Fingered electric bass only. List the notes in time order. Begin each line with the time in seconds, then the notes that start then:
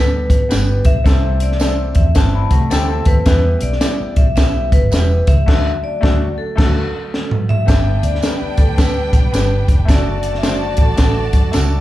Already playing: D2
0.30 B1
0.52 G1
0.85 B1
1.06 C2
1.96 E2
2.16 G1
2.51 C3
2.72 D2
3.06 D#2
3.26 E2
3.62 B1
4.01 muted fingered electric bass stroke
4.16 B1
4.72 G1
4.93 E1
5.28 C#2
5.48 D2
6.03 D2
6.58 D2
7.68 G1
8.03 D2
8.42 muted fingered electric bass stroke
8.58 D2
9.13 B1
9.33 G1
9.69 F1
9.88 F#1
10.78 A1
10.99 A1
11.33 F#2
11.55 C#2